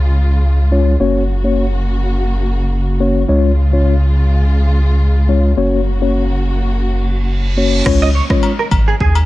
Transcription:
0.00 0.96 C#2 medium
0.00 0.98 C#3 medium
0.00 0.98 G#3 medium
0.00 0.98 F4 medium
0.71 0.93 G#3 medium
0.71 0.93 C#4 medium
0.71 0.94 F4 medium
0.71 0.94 C#5 medium
1.00 3.25 F#1 medium
1.00 3.26 C#3 medium
1.00 1.22 A#3 medium
1.00 3.26 A#3 medium
1.00 1.22 C#4 medium
1.00 3.26 F#4 medium
1.00 1.22 F#4 medium
1.00 1.22 C#5 loud
1.44 1.65 A#3 medium
1.44 1.65 C#4 medium
1.44 1.65 F#4 medium
1.44 1.65 C#5 medium
3.00 3.22 A#3 medium
3.00 3.22 C#4 medium
3.00 3.22 F#4 medium
3.00 3.22 C#5 medium
3.29 5.53 C#2 medium
3.29 5.55 C#3 medium
3.29 3.50 G#3 medium
3.29 5.55 G#3 medium
3.29 3.51 C#4 medium
3.29 5.55 F4 medium
3.29 3.51 F4 medium
3.29 3.51 C#5 loud
3.73 3.93 G#3 medium
3.73 3.93 C#4 medium
3.73 3.93 F4 medium
3.73 3.94 C#5 medium
5.29 5.50 G#3 medium
5.29 5.51 C#4 medium
5.29 5.51 F4 medium
5.29 5.51 C#5 medium
5.57 7.82 F#1 medium
5.57 7.83 C#3 medium
5.57 5.79 A#3 medium
5.57 7.84 A#3 medium
5.57 5.79 C#4 medium
5.57 7.84 F#4 medium
5.57 5.79 F#4 medium
5.57 5.79 C#5 loud
6.01 6.22 A#3 medium
6.01 6.22 C#4 medium
6.01 6.22 F#4 medium
6.01 6.22 C#5 medium
6.72 reverse cymbal medium
7.57 7.84 A#3 medium
7.57 7.84 C#4 medium
7.57 7.84 F#4 medium
7.57 7.84 C#5 medium
7.86 8.20 C#2 loud
7.86 8.08 G#3 medium
7.86 8.08 C#4 medium
7.86 8.08 F4 medium
7.86 8.08 C#5 loud
7.86 kick loud
7.86 cross-stick loud
7.86 crash medium
7.86 downlifter medium
8.02 8.09 D#5 medium
8.15 8.23 C#5 medium
8.30 8.50 G#3 medium
8.30 8.50 C#4 medium
8.30 8.51 F4 medium
8.30 8.51 C#5 medium
8.30 kick loud
8.30 cross-stick medium
8.43 high agogo medium
8.59 8.66 A#4 medium
8.71 8.94 G#1 medium
8.71 kick medium
8.71 high agogo medium
8.88 8.94 G#4 medium
9.00 9.26 D#2 loud
9.00 9.16 G#4 medium
9.00 kick medium
9.15 high agogo medium

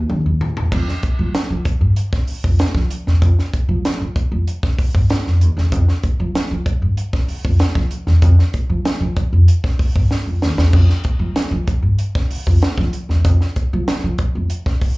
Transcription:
0.10 0.21 D#3 medium
0.10 mid tom medium
0.26 0.37 D#2 loud
0.41 floor tom medium
0.57 0.68 E2 medium
0.57 floor tom medium
0.72 0.84 F2 loud
0.72 kick loud
0.72 crash medium
0.88 snare soft
1.03 muted upright bass stroke soft
1.03 kick medium
1.03 closed hi-hat medium
1.19 1.30 F3 loud
1.34 muted upright bass stroke soft
1.34 snare loud
1.34 closed hi-hat medium
1.50 1.61 F3 loud
1.65 kick loud
1.65 closed hi-hat medium
1.81 1.92 G2 medium
1.96 closed hi-hat medium
2.13 kick loud
2.13 snare soft
2.27 muted upright bass stroke soft
2.27 open hi-hat medium
2.44 2.55 F2 medium
2.44 kick loud
2.59 snare loud
2.59 closed hi-hat medium
2.75 2.86 F3 medium
2.75 kick loud
2.75 snare soft
2.91 closed hi-hat medium
3.07 3.22 E2 medium
3.07 snare soft
3.22 3.33 F2 loud
3.22 kick loud
3.22 closed hi-hat medium
3.39 snare soft
3.53 muted upright bass stroke soft
3.53 kick medium
3.53 closed hi-hat medium
3.69 3.80 F3 loud
3.84 muted upright bass stroke medium
3.84 snare loud
3.84 closed hi-hat medium
4.00 4.11 F3 medium
4.16 kick loud
4.16 closed hi-hat medium
4.32 4.43 F2 medium
4.47 closed hi-hat medium
4.63 kick loud
4.63 snare soft
4.79 muted upright bass stroke soft
4.79 kick medium
4.79 open hi-hat medium
4.95 5.06 G2 medium
4.95 kick loud
5.10 snare loud
5.10 closed hi-hat medium
5.26 5.43 F2 medium
5.26 snare soft
5.41 5.53 D#2 medium
5.41 closed hi-hat medium
5.57 5.73 E2 loud
5.57 snare soft
5.72 5.84 F2 loud
5.72 kick loud
5.72 closed hi-hat loud
5.88 snare soft
6.03 muted upright bass stroke soft
6.03 kick medium
6.03 closed hi-hat medium
6.20 6.31 F3 loud
6.35 muted upright bass stroke medium
6.35 snare loud
6.35 closed hi-hat medium
6.51 6.62 F3 medium
6.66 kick loud
6.66 closed hi-hat medium
6.82 6.93 G2 medium
6.97 closed hi-hat medium
7.13 kick loud
7.13 snare soft
7.28 muted upright bass stroke soft
7.28 open hi-hat medium
7.45 7.56 F2 medium
7.45 kick loud
7.59 snare loud
7.59 closed hi-hat medium
7.75 7.87 F3 medium
7.75 kick loud
7.75 snare soft
7.91 closed hi-hat medium
8.07 8.22 E2 medium
8.07 snare soft
8.22 8.34 F2 loud
8.22 kick loud
8.22 closed hi-hat loud
8.39 snare soft
8.53 muted upright bass stroke soft
8.53 kick medium
8.53 closed hi-hat medium
8.70 8.81 F3 loud
8.85 muted upright bass stroke soft
8.85 snare loud
8.85 closed hi-hat loud
9.00 9.12 F3 loud
9.16 kick loud
9.16 closed hi-hat medium
9.33 9.44 F2 medium
9.48 closed hi-hat medium
9.64 kick loud
9.64 snare soft
9.79 muted upright bass stroke soft
9.79 kick medium
9.79 open hi-hat medium
9.96 10.07 G2 medium
9.96 kick medium
10.11 snare medium
10.26 10.42 F2 medium
10.42 10.53 D#2 medium
10.42 snare medium
10.57 10.74 E2 medium
10.57 snare loud
10.73 10.85 F2 loud
10.73 kick loud
10.73 crash medium
10.89 snare soft
11.04 muted upright bass stroke medium
11.04 kick medium
11.04 closed hi-hat medium
11.19 11.31 F3 loud
11.36 muted upright bass stroke soft
11.36 snare loud
11.36 closed hi-hat loud
11.51 11.63 F3 loud
11.67 kick loud
11.67 closed hi-hat medium
11.82 11.94 G2 medium
11.99 closed hi-hat medium
12.15 kick loud
12.15 snare soft
12.30 muted upright bass stroke soft
12.30 open hi-hat medium
12.47 12.58 F2 medium
12.47 kick medium
12.62 snare loud
12.62 closed hi-hat medium
12.78 12.89 F3 medium
12.78 kick loud
12.78 snare soft
12.93 closed hi-hat medium
13.09 13.25 E2 medium
13.09 snare soft
13.25 13.36 F2 loud
13.25 kick loud
13.25 closed hi-hat loud
13.41 snare soft
13.56 muted upright bass stroke soft
13.56 kick medium
13.56 closed hi-hat medium
13.73 13.84 F3 loud
13.88 muted upright bass stroke soft
13.88 snare loud
13.88 closed hi-hat loud
14.04 14.15 F3 loud
14.18 kick loud
14.18 closed hi-hat medium
14.35 14.46 F2 medium
14.50 closed hi-hat loud
14.66 kick loud
14.66 snare soft
14.82 muted upright bass stroke soft
14.82 kick medium
14.82 open hi-hat medium

